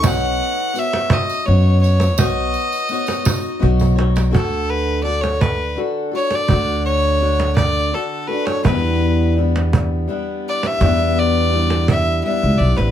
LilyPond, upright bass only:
\new Staff \with { instrumentName = "Upright bass" } { \clef bass \time 3/4 \key d \major \tempo 4 = 84 b,,8 r4. fis,4 | b,,8 r4. b,,4 | d,2 r4 | d,2 r4 |
e,2 r4 | e,2 r16 cis,16 b,,16 a,,16 | }